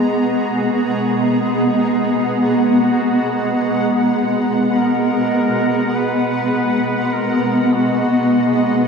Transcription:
Already playing: G#3 B3 G#4 F#5 A#5
0.08 F#4
1.20 E4
1.27 D#4
2.36 G#4
2.43 F#4
4.70 B4
4.77 A#4
5.96 B4
6.02 D#5
7.13 A#4
7.73 F#4

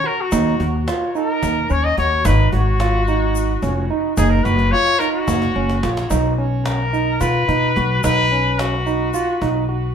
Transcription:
0.04 F#4 A#4, cajon slap
0.21 F#4
0.32 D#2 D#4, cajon bass, shaker
0.60 D#2 F#4, cajon bass
0.88 F4, cajon slap, shaker
1.15 D#4 A#4, cajon slap, shaker
1.43 D#2, cajon bass, shaker
1.70 D#2 C#4 C#5, cajon slap, shaker
1.84 D#5
1.98 D#2 F#4 C#5, cajon bass
2.25 G#1 D#4 B4, cajon bass, shaker
2.52 G#1 F#4, cajon bass, cajon slap
2.79 F4, cajon slap, shaker
3.07 D#4, cajon slap, shaker
3.35 cajon slap, shaker
3.62 F1 C#4, cajon bass, shaker
3.90 D#4, cajon slap
4.17 F#1 D#4 G#4, cajon bass, shaker
4.30 A#4
4.44 F#1 F#4 B4, cajon slap, shaker
4.59 cajon slap
4.71 F4 C#5, cajon slap
4.86 cajon slap
4.99 D#4 A#4, cajon slap, shaker
5.12 F#4
5.28 F#1, cajon bass, cajon slap, shaker
5.42 cajon slap
5.56 F#1 C#4, cajon slap
5.69 cajon slap
5.83 A#1 F4, cajon slap
5.97 cajon slap
6.10 B1 D#4, cajon bass, shaker
6.38 C#4, cajon slap
6.66 A#4, cajon slap
6.93 D#4, cajon slap, shaker
7.21 B2 F4 B4, cajon bass, shaker
7.48 B2 D#4, cajon bass
7.76 B1 F#4, cajon bass, cajon slap
8.03 B1 D#4 B4, cajon bass, shaker
8.32 C#4, cajon slap
8.59 F#4, cajon slap
8.86 D#4, cajon slap, shaker
9.14 F4, shaker
9.41 B1 D#4, cajon bass
9.69 F#4, cajon slap

